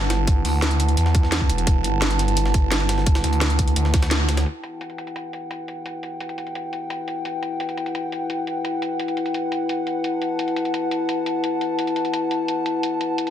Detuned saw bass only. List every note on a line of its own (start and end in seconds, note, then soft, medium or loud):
0.00 0.43 G1 loud
0.45 0.96 D2 loud
0.97 1.48 E2 loud
1.50 1.66 E1 medium
1.67 1.83 E1 loud
1.84 3.23 G1 loud
3.24 3.75 D2 loud
3.76 4.45 D2 loud